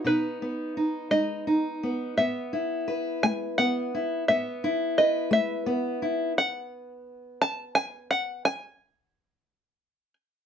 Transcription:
<<
  \new Staff \with { instrumentName = "Five-string banjo" } { \time 6/8 \key a \lydian \tempo 4. = 57 b'4. dis''4 r8 | e''4. gis''8 fis''4 | e''4 dis''8 e''4. | fis''4. a''8 gis''8 fis''8 |
gis''2~ gis''8 r8 | }
  \new Staff \with { instrumentName = "Steel-string acoustic guitar" } { \time 6/8 \key a \lydian << { <b dis'>8 b8 dis'8 dis'8 dis'8 b8 | b8 e'8 b'4 b8 e'8 | b8 e'8 b'4 b8 e'8 | r2. |
r2. | } \\ { b,4 r8 gis4 r8 | a,4 r8 a4 r8 | a,4 r8 a4 r8 | r2. |
r2. | } >> }
>>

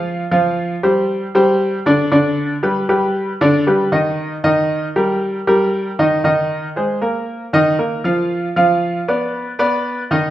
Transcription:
\new Staff \with { instrumentName = "Grand piano" } { \time 4/4 \key g \phrygian \tempo 4 = 116 <f f' f''>8 <f f' f''>4 <g g' c''>4 <g g' c''>4 <d d' d''>8 | <d d' d''>4 <g g' b'>8 <g g' b'>4 <d d' d''>8 <g g' b'>8 <ees ees' ees''>8~ | <ees ees' ees''>8 <ees ees' ees''>4 <g g' bes'>4 <g g' bes'>4 <ees ees' ees''>8 | <ees ees' ees''>4 <aes aes' c''>8 <bes bes'>4 <ees ees' ees''>8 <bes bes'>8 <f f' f''>8~ |
<f f' f''>8 <f f' f''>4 <b b' d''>4 <b b' d''>4 <ees ees' ees''>8 | }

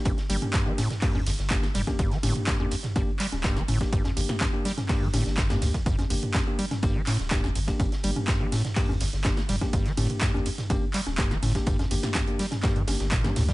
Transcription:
<<
  \new Staff \with { instrumentName = "Tine electric piano" } { \time 4/4 \key g \minor \tempo 4 = 124 <bes d' g'>16 r16 <bes d' g'>8. <bes d' g'>16 r8 <bes d' g'>16 r8. <bes d' g'>16 r8 <bes d' g'>16~ | <bes d' g'>16 r16 <bes d' g'>8. <bes d' g'>16 r8 <bes d' g'>16 r8. <bes d' g'>16 r8 <bes d' g'>16~ | <bes d' g'>16 r16 <bes d' g'>8. <bes d' g'>16 r8 <bes d' g'>16 r16 <bes d' g'>8 r16 <bes d' g'>8 r16 | r8 <bes d' g'>8. <bes d' g'>16 r8 <bes d' g'>16 r8. <bes d' g'>16 r8 <bes d' g'>16~ |
<bes d' g'>16 r16 <bes d' g'>8. <bes d' g'>16 r8 <bes d' g'>16 r8. <bes d' g'>16 r8 <bes d' g'>16~ | <bes d' g'>16 r16 <bes d' g'>8. <bes d' g'>16 r8 <bes d' g'>16 r8. <bes d' g'>16 r8 <bes d' g'>16~ | <bes d' g'>16 r16 <bes d' g'>8. <bes d' g'>16 r8 <bes d' g'>16 r16 <bes d' g'>8 r16 <bes d' g'>8 r16 | }
  \new Staff \with { instrumentName = "Acid bass" } { \clef bass \time 4/4 \key g \minor g,16 r16 g16 r16 g,16 f16 a,16 r16 g,16 f,16 f,16 r16 g,16 r16 g16 r16 | g,16 f16 a,16 r16 g,16 f,16 f,16 r16 g,16 r16 g16 r16 g,16 f16 a,16 r16 | g,16 f,16 f,16 r16 g,16 r16 g16 r16 g,16 f16 a,16 r16 g,16 f,16 f,16 r16 | g,16 f,16 f,16 r16 g,16 r16 g16 r16 g,16 f16 a,16 r16 g,16 f,16 f,16 r16 |
g,16 r16 g16 r16 g,16 f16 a,16 r16 g,16 f,16 f,16 r16 g,16 r16 g16 r16 | g,16 f16 a,16 r16 g,16 f,16 f,16 r16 g,16 r16 g16 r16 g,16 f16 a,16 r16 | g,16 f,16 f,16 r16 g,16 r16 g16 r16 g,16 f16 r8 bes,16 g16 a,16 g16 | }
  \new Staff \with { instrumentName = "Sub bass" } { \clef bass \time 4/4 \key g \minor g,,16 r16 g,,16 r4. g,16 g,,16 g,,8 r16 f,,16 r16 | g,,16 r16 g,,16 r4 r16 g,,16 r8 d,,8 r16 g,,16 r16 | g,,16 r16 g,,16 r4. g,16 g,,16 g,,8 g,16 d,16 r16 | g,,16 r16 g,,16 r4 r16 g,,16 r8 d,,8 r16 g,,16 r16 |
g,,16 r16 g,,16 r4. g,16 g,,16 g,,8 r16 f,,16 r16 | g,,16 r16 g,,16 r4 r16 g,,16 r8 d,,8 r16 g,,16 r16 | g,,16 r16 g,,16 r4. g,16 g,,16 g,,8 g,16 d,16 r16 | }
  \new DrumStaff \with { instrumentName = "Drums" } \drummode { \time 4/4 <cgho hh bd cymr tamb>16 <hh sn>16 <hho cymr tamb>16 <cgho hh toml>16 <hc hh bd cymr sn tamb>8 <cgho hho cymr sn tamb>16 <hh sn toml>16 <hc hh hho bd cymr>16 cgho16 <hho cymr sn tamb>16 <hh sn>16 <hc cgho hh bd cymr sn tamb>16 sn16 <hho cymr sn tamb toml>16 <cgho hh bd sn>16 | <hh bd cymr tamb>16 <hh sn>16 <cgho hho cymr tamb>16 <hh toml>16 <hc hh bd cymr sn tamb>16 cgho16 <hho cymr tamb>16 <hh sn toml>16 <cgho hh bd cymr tamb>8 <hc hho cymr tamb>16 <cgho hh sn>16 <hc hh bd cymr sn tamb>16 sn16 <cgho hho cymr tamb>16 <hh bd sn>16 | <hh bd cymr tamb>16 <cgho hh sn>16 <hho cymr tamb>16 <hh sn toml>16 <hc cgho hh bd cymr sn tamb>8 <hho cymr sn tamb>16 <cgho hh sn toml>16 <hc hh hho bd cymr>8 <cgho hho cymr sn tamb>16 <hh sn>16 <hc hh bd cymr sn tamb>16 <cgho hh sn>16 <hho cymr sn tamb toml>16 <hh bd sn>16 | <hh bd cymr tamb>16 <cgho hh sn>16 <hho cymr tamb>16 <hh toml>16 <hc cgho hh bd cymr sn tamb>8 <hho cymr tamb>16 <cgho hh sn toml>16 <hh bd cymr tamb>8 <hc cgho hho cymr tamb>16 <hh sn>16 <hc hh bd cymr sn tamb>16 <cgho sn>16 <hho cymr tamb>16 <hh bd sn>16 |
<cgho hh bd cymr tamb>16 <hh sn>16 <hho cymr tamb>16 <cgho hh toml>16 <hc hh bd cymr sn tamb>8 <cgho hho cymr sn tamb>16 <hh sn toml>16 <hc hh hho bd cymr>16 cgho16 <hho cymr sn tamb>16 <hh sn>16 <hc cgho hh bd cymr sn tamb>16 sn16 <hho cymr sn tamb toml>16 <cgho hh bd sn>16 | <hh bd cymr tamb>16 <hh sn>16 <cgho hho cymr tamb>16 <hh toml>16 <hc hh bd cymr sn tamb>16 cgho16 <hho cymr tamb>16 <hh sn toml>16 <cgho hh bd cymr tamb>8 <hc hho cymr tamb>16 <cgho hh sn>16 <hc hh bd cymr sn tamb>16 sn16 <cgho hho cymr tamb>16 <hh bd sn>16 | <hh bd cymr tamb>16 <cgho hh sn>16 <hho cymr tamb>16 <hh sn toml>16 <hc cgho hh bd cymr sn tamb toml>16 hh16 <hho cymr sn tamb>16 <cgho hh sn toml>16 <hc hh bd cymr sn tamb>16 hh16 <cgho hho cymr sn tamb>16 <hh sn>16 <hc hh bd cymr sn tamb>16 <cgho hh sn>16 <hho cymr sn tamb toml>16 <hh bd sn>16 | }
>>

